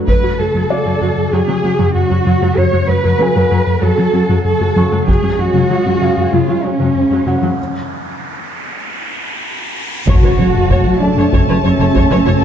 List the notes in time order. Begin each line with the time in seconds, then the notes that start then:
Already playing: A3 A4
0.07 F#2 C#3 F#3 F#4 B4, taiko
0.23 F#2 F#3 F#4
0.39 F#2 F#3 A3 A4
0.54 F#2 F#3
0.70 F#3 C#4 D5
0.85 F#2 F#3 F#4
1.01 F#2 F#3
1.17 F#2
1.32 F#2 F#3 G#4
1.47 F#3 C#4
1.63 F#3 C#4
1.79 F#2 F#3
1.95 F#2 F#4
2.10 F#2 F#3 F#4
2.26 F#2 F#3
2.42 F#2 F#3 A3
2.57 F#2 F#3 C#5
2.73 F#2 F#3 F#4
2.88 F#2 F#3 A3 B4
3.03 F#2 F#3
3.20 F#3 C#4 A4 G#5
3.35 F#2 F#3 F#4
3.51 F#2 F#3
3.67 F#2
3.82 F#2 F#3 A4
3.98 F#3 C#4
4.13 F#3 C#4
4.29 F#2 F#3
4.45 F#2 A4
4.61 F#2 F#3 F#4
4.76 F#2 F#3 C#6
4.92 F#2 F#3 A3
5.07 F#2 C#3 F#3 G#3 C#4 G#4 C#5, taiko, riser
5.22 F#2 F#3 C#4
5.38 F#2 F3 F#3 F#4
5.54 F#2 C#3 F#3
5.70 F#3 G#3
5.86 F#2 F#3 C#4
6.01 F#2 C#3 F#3 F5
6.17 F#2
6.32 F#2 C#3 F#3 F4
6.48 F#3 G#3
6.64 F#3 G#3 C#4
6.79 F#2 C#3 F#3
6.95 F#2
7.10 F#2 F#3 C#4
7.26 F#2 C#3 F#3 F#5
7.42 F#2 F3 F#3
10.07 F#1 F#2 C#3 F#3 A3 F#4 A4 C#5 A5, taiko, impact
10.23 F#1 F#2 F#4 B4 C#5
10.38 F#1 F#3 C#4 C#5
10.55 F#2
10.70 F#1 F#2 F#3 C#5, taiko
10.86 F#3
11.00 F#3 D4 A4 A5
11.17 F#1 F#2 A3 A4 C#5
11.32 F#1 F#2 F#3 C#4 C#5, taiko
11.47 F#1 F#3 C#4 B4 C#5
11.63 F#1 F#3 C#4 C#5
11.78 F#1 F#3 C#4 A4 C#5
11.94 F#1 F#2 F#3 C#5, taiko
12.10 F#1 F#3 B4 C#5
12.26 F#1 F#2 F#4 C#5
12.41 A4